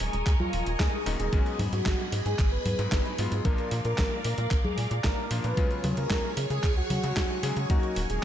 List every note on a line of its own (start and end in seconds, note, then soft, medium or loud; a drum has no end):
0.00 1.03 F#3 medium
0.00 1.03 A#3 medium
0.00 1.03 C#4 medium
0.00 1.03 D#4 loud
0.00 0.32 G#4 loud
0.00 1.31 A#4 medium
0.00 3.41 D#5 medium
0.00 3.41 G#5 medium
0.00 1.29 C#6 medium
0.00 open hi-hat loud
0.13 0.23 D#1 loud
0.13 closed hi-hat medium
0.27 0.36 D#2 medium
0.27 kick loud
0.27 clap medium
0.27 closed hi-hat medium
0.40 0.71 F4 loud
0.40 high conga medium
0.53 0.62 D#1 medium
0.53 open hi-hat loud
0.66 0.76 D#1 loud
0.66 closed hi-hat medium
0.80 0.89 D#2 medium
0.80 1.11 G#4 loud
0.80 kick loud
0.80 snare loud
0.80 clap medium
0.80 closed hi-hat medium
1.06 1.15 D#1 medium
1.06 1.29 G#2 medium
1.06 1.30 F#3 medium
1.06 1.29 A#3 medium
1.06 1.29 C#4 medium
1.06 1.29 D#4 loud
1.06 open hi-hat loud
1.19 1.29 D#1 loud
1.19 1.61 G#4 loud
1.19 closed hi-hat medium
1.33 1.42 G#1 loud
1.33 2.76 G#2 loud
1.33 2.76 F#3 medium
1.33 2.76 G#3 medium
1.33 2.76 B3 medium
1.33 2.76 C#4 loud
1.33 3.43 G#4 medium
1.33 3.43 B5 medium
1.33 kick loud
1.33 closed hi-hat medium
1.46 closed hi-hat soft
1.59 1.69 G#2 loud
1.59 open hi-hat loud
1.59 high conga medium
1.72 1.82 G#2 loud
1.72 2.15 F#4 loud
1.72 closed hi-hat soft
1.86 1.95 G#1 medium
1.86 kick loud
1.86 snare loud
1.86 clap medium
1.86 closed hi-hat medium
1.99 closed hi-hat soft
2.12 2.22 G#2 medium
2.12 open hi-hat loud
2.26 2.35 G#2 loud
2.26 2.47 G#4 medium
2.26 closed hi-hat soft
2.39 2.58 G#1 medium
2.39 kick loud
2.39 clap medium
2.39 closed hi-hat medium
2.52 3.34 B4 loud
2.65 2.75 G#2 medium
2.65 open hi-hat loud
2.65 high conga medium
2.79 3.15 G#2 medium
2.79 2.88 G#2 loud
2.79 3.15 F#3 medium
2.79 3.15 G#3 medium
2.79 3.15 B3 medium
2.79 3.15 D#4 medium
2.79 closed hi-hat medium
2.92 3.01 G#1 medium
2.92 kick loud
2.92 snare loud
2.92 clap medium
2.92 closed hi-hat medium
3.05 closed hi-hat soft
3.19 3.28 G#2 medium
3.19 3.42 F#3 medium
3.19 3.42 G#3 medium
3.19 3.42 B3 medium
3.19 3.42 F4 loud
3.19 open hi-hat loud
3.32 3.41 G#2 medium
3.32 closed hi-hat medium
3.45 3.54 A#1 loud
3.45 5.28 A#2 medium
3.45 5.28 F3 medium
3.45 5.28 A#3 medium
3.45 5.28 D4 medium
3.45 5.28 F4 loud
3.45 3.77 A#4 loud
3.45 5.55 A#4 medium
3.45 5.55 D5 medium
3.45 5.55 F5 medium
3.45 5.55 D6 medium
3.45 kick loud
3.45 closed hi-hat medium
3.58 closed hi-hat soft
3.71 3.81 A#2 loud
3.71 open hi-hat loud
3.85 3.94 A#2 loud
3.85 4.17 A#4 loud
3.85 closed hi-hat medium
3.98 4.08 A#1 medium
3.98 kick loud
3.98 snare loud
3.98 clap medium
3.98 closed hi-hat medium
4.25 4.34 A#2 medium
4.25 4.56 A#4 loud
4.25 open hi-hat loud
4.38 4.47 A#2 loud
4.38 closed hi-hat soft
4.51 4.61 A#1 medium
4.51 kick loud
4.51 clap medium
4.51 closed hi-hat medium
4.64 4.96 G#4 medium
4.64 high conga medium
4.78 4.87 A#2 medium
4.78 open hi-hat loud
4.91 5.00 A#2 loud
4.91 closed hi-hat medium
5.04 5.14 A#1 medium
5.04 5.36 A#4 medium
5.04 kick loud
5.04 snare loud
5.04 clap medium
5.04 closed hi-hat medium
5.31 5.40 A#2 loud
5.31 5.54 F3 medium
5.31 5.54 A#3 medium
5.31 5.54 D4 medium
5.31 5.54 F4 loud
5.31 open hi-hat loud
5.44 5.54 A#2 loud
5.44 5.86 B4 loud
5.44 closed hi-hat soft
5.57 5.67 C#2 loud
5.57 7.01 C#3 loud
5.57 7.01 F#3 medium
5.57 7.01 G#3 medium
5.57 7.01 C#4 medium
5.57 7.01 F4 loud
5.57 7.68 G#4 medium
5.57 7.68 C#5 medium
5.57 8.24 G#5 medium
5.57 8.24 C#6 loud
5.57 kick loud
5.57 closed hi-hat medium
5.71 closed hi-hat soft
5.84 5.93 C#3 loud
5.84 open hi-hat loud
5.84 high conga medium
5.97 6.07 C#3 loud
5.97 6.39 A#4 loud
5.97 closed hi-hat medium
6.10 6.20 C#2 medium
6.10 kick loud
6.10 snare loud
6.10 clap medium
6.10 closed hi-hat medium
6.37 6.46 C#3 medium
6.37 open hi-hat loud
6.50 6.60 C#3 loud
6.50 6.71 G#4 medium
6.50 closed hi-hat medium
6.64 6.82 C#2 medium
6.64 kick loud
6.64 clap medium
6.64 closed hi-hat medium
6.77 7.59 F#4 loud
6.90 6.99 C#3 medium
6.90 open hi-hat loud
6.90 high conga medium
7.03 7.40 C#3 medium
7.03 7.13 C#3 loud
7.03 7.40 F#3 medium
7.03 7.40 G#3 medium
7.03 7.40 C#4 medium
7.03 7.40 F#4 medium
7.03 closed hi-hat medium
7.17 7.26 C#2 medium
7.17 kick loud
7.17 snare loud
7.17 clap medium
7.17 closed hi-hat medium
7.43 7.53 C#3 medium
7.43 7.67 F#3 loud
7.43 7.67 G#3 medium
7.43 7.67 C#4 medium
7.43 7.67 G#4 loud
7.43 open hi-hat loud
7.57 7.66 C#3 medium
7.57 closed hi-hat medium
7.70 7.79 D#2 loud
7.70 8.24 F#3 medium
7.70 8.24 A#3 medium
7.70 8.24 C#4 medium
7.70 8.24 D#4 loud
7.70 8.02 F#4 loud
7.70 8.24 A#4 medium
7.70 8.24 D#5 medium
7.70 kick loud
7.70 closed hi-hat medium
7.83 closed hi-hat soft
7.96 8.06 D#1 loud
7.96 open hi-hat loud
8.10 8.19 D#1 loud
8.10 8.24 G#4 loud
8.10 closed hi-hat medium